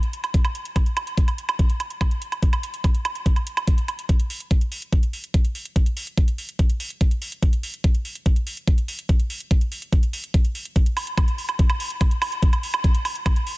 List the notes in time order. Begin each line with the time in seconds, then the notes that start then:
0.03 closed hi-hat
0.13 closed hi-hat
0.24 closed hi-hat, high woodblock
0.34 kick, closed hi-hat
0.45 closed hi-hat, high woodblock
0.55 closed hi-hat
0.65 closed hi-hat
0.76 kick, closed hi-hat, high woodblock
0.86 closed hi-hat
0.97 closed hi-hat, high woodblock
1.07 closed hi-hat
1.17 kick, closed hi-hat
1.28 closed hi-hat, high woodblock
1.38 closed hi-hat
1.49 closed hi-hat, high woodblock
1.59 kick, closed hi-hat
1.70 closed hi-hat
1.80 closed hi-hat, high woodblock
1.90 closed hi-hat
2.01 kick, closed hi-hat, high woodblock
2.11 closed hi-hat
2.22 closed hi-hat
2.32 closed hi-hat, high woodblock
2.42 kick, closed hi-hat
2.53 closed hi-hat, high woodblock
2.63 closed hi-hat
2.74 closed hi-hat
2.84 kick, closed hi-hat, high woodblock
2.95 closed hi-hat
3.05 closed hi-hat, high woodblock
3.15 closed hi-hat
3.26 kick, closed hi-hat
3.36 closed hi-hat, high woodblock
3.47 closed hi-hat
3.57 closed hi-hat, high woodblock
3.67 kick, closed hi-hat
3.78 closed hi-hat
3.88 closed hi-hat, high woodblock
3.99 closed hi-hat
4.09 kick, closed hi-hat
4.20 closed hi-hat
4.30 open hi-hat
4.40 closed hi-hat
4.51 kick, closed hi-hat
4.61 closed hi-hat
4.72 open hi-hat
4.82 closed hi-hat
4.92 kick, closed hi-hat
5.03 closed hi-hat
5.13 open hi-hat
5.24 closed hi-hat
5.34 kick, closed hi-hat
5.45 closed hi-hat
5.55 open hi-hat
5.65 closed hi-hat
5.76 kick, closed hi-hat
5.86 closed hi-hat
5.97 open hi-hat
6.07 closed hi-hat
6.17 kick, closed hi-hat
6.28 closed hi-hat
6.38 open hi-hat
6.49 closed hi-hat
6.59 kick, closed hi-hat
6.70 closed hi-hat
6.80 open hi-hat
6.90 closed hi-hat
7.01 kick, closed hi-hat
7.11 closed hi-hat
7.22 open hi-hat
7.32 closed hi-hat
7.43 kick, closed hi-hat
7.53 closed hi-hat
7.63 open hi-hat
7.74 closed hi-hat
7.84 kick, closed hi-hat
7.95 closed hi-hat
8.05 open hi-hat
8.15 closed hi-hat
8.26 kick, closed hi-hat
8.36 closed hi-hat
8.47 open hi-hat
8.57 closed hi-hat
8.68 kick, closed hi-hat
8.78 closed hi-hat
8.88 open hi-hat
8.99 closed hi-hat
9.09 kick, closed hi-hat
9.20 closed hi-hat
9.30 open hi-hat
9.40 closed hi-hat
9.51 kick, closed hi-hat
9.61 closed hi-hat
9.72 open hi-hat
9.82 closed hi-hat
9.93 kick, closed hi-hat
10.03 closed hi-hat
10.13 open hi-hat
10.24 closed hi-hat
10.34 kick, closed hi-hat
10.45 closed hi-hat
10.55 open hi-hat
10.65 closed hi-hat
10.76 kick, closed hi-hat
10.86 closed hi-hat
10.97 open hi-hat, high woodblock
11.07 closed hi-hat
11.17 kick, closed hi-hat, high woodblock
11.28 closed hi-hat
11.38 open hi-hat
11.49 closed hi-hat, high woodblock
11.59 kick, closed hi-hat
11.70 closed hi-hat, high woodblock
11.80 open hi-hat
11.90 closed hi-hat
12.01 kick, closed hi-hat, high woodblock
12.11 closed hi-hat
12.22 open hi-hat, high woodblock
12.32 closed hi-hat
12.42 kick, closed hi-hat
12.53 closed hi-hat, high woodblock
12.63 open hi-hat
12.74 closed hi-hat, high woodblock
12.84 kick, closed hi-hat
12.95 closed hi-hat
13.05 open hi-hat, high woodblock
13.15 closed hi-hat
13.26 kick, closed hi-hat, high woodblock
13.36 closed hi-hat
13.47 open hi-hat